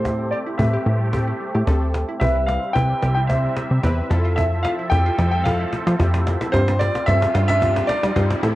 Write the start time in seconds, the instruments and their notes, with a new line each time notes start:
Already playing: analog synth bass A2, supersaw synth A3 C4 G4, synth keys C4 G4 A4, grand piano C5
0.05 synth arpeggio sound E4, cajon bass, cajon slap
0.31 synth arpeggio sound G4, grand piano D5
0.46 synth arpeggio sound E4
0.58 analog synth bass A2, synth arpeggio sound G3, synth keys C4 G4 B4, grand piano E5, cajon bass, cajon slap
0.73 synth arpeggio sound G4
0.86 analog synth bass A2, synth arpeggio sound E4
1.00 synth arpeggio sound G3
1.13 synth keys C4 G4 A4, synth arpeggio sound G4, cajon bass, cajon slap
1.27 synth arpeggio sound E4
1.40 synth arpeggio sound G3
1.55 analog synth bass A2, synth arpeggio sound G4
1.67 analog synth bass D2, synth keys C4 G4 A4, cajon bass, cajon slap
1.82 synth arpeggio sound G3
1.94 cajon slap
2.09 synth arpeggio sound E4
2.20 analog synth bass C2, supersaw synth C3 G3 C4 E5, synth keys C4 E4 B4, synth arpeggio sound G4, grand piano E5, cajon bass, cajon slap, riser
2.36 synth arpeggio sound E4, cajon slap
2.46 synth arpeggio sound G3, grand piano F5, cajon slap
2.63 cajon slap
2.73 analog synth bass C2, synth keys C4 E4 B4, synth arpeggio sound E4, grand piano G5, cajon bass, cajon slap
2.90 synth arpeggio sound G3
3.02 analog synth bass C2, synth arpeggio sound G4, cajon slap
3.15 synth arpeggio sound E4, grand piano G5, cajon slap
3.27 synth arpeggio sound G3, synth keys C4 E4 C5, grand piano E5, cajon bass, cajon slap
3.44 cajon slap
3.57 cajon slap
3.71 analog synth bass C3, synth arpeggio sound G3, cajon slap
3.83 analog synth bass E2, synth keys C4 E4 B4, synth arpeggio sound G4, cajon bass, cajon slap
3.98 cajon slap
4.10 analog synth bass F2, supersaw synth F3 C4 A4, synth arpeggio sound F3, synth keys E4 F4 A4, cajon slap
4.25 synth arpeggio sound F4, cajon slap
4.36 synth arpeggio sound E4, grand piano E5, cajon bass, cajon slap
4.52 cajon slap
4.63 synth arpeggio sound F4, grand piano F5, cajon slap
4.79 synth arpeggio sound E4, cajon slap
4.90 analog synth bass F2, synth arpeggio sound F3, synth keys E4 F4 G4, grand piano G5, cajon bass, cajon slap
5.06 synth arpeggio sound F4
5.18 analog synth bass F2, synth arpeggio sound E4, cajon slap
5.31 synth arpeggio sound F3, grand piano G5, cajon slap
5.44 synth keys E4 F4 A4, synth arpeggio sound F4, grand piano F5, cajon bass, cajon slap
5.60 synth arpeggio sound E4
5.73 synth arpeggio sound F3, cajon slap
5.87 analog synth bass F3, synth arpeggio sound F4, cajon slap
5.99 analog synth bass F2, synth keys E4 F4 G4, cajon bass, cajon slap
6.14 synth arpeggio sound F3, cajon slap
6.27 cajon slap
6.41 synth arpeggio sound E4, cajon slap
6.52 analog synth bass G2, supersaw synth G3 F4, synth keys C4 F4 G4, synth arpeggio sound F4, grand piano C5, cajon bass, cajon slap
6.68 synth arpeggio sound D4, cajon slap
6.79 synth arpeggio sound F3, grand piano D5, cajon slap
6.95 cajon slap
7.06 analog synth bass G2, synth keys C4 F4 A4, synth arpeggio sound D4, grand piano E5, cajon bass, cajon slap
7.22 synth arpeggio sound F3, cajon slap
7.34 analog synth bass G2, synth arpeggio sound F4, cajon slap
7.48 synth arpeggio sound D4, grand piano E5, cajon slap
7.61 synth arpeggio sound F3, synth keys C4 F4 G4, cajon bass, cajon slap
7.76 cajon slap
7.87 grand piano D5, cajon slap
8.03 synth arpeggio sound F3, analog synth bass G3, cajon slap
8.16 analog synth bass G2, synth keys C4 F4 G4, synth arpeggio sound F4, cajon bass, cajon slap
8.30 cajon slap
8.43 analog synth bass A2, synth arpeggio sound E3, supersaw synth A3 C4 G4, synth keys C4 G4 A4, cajon slap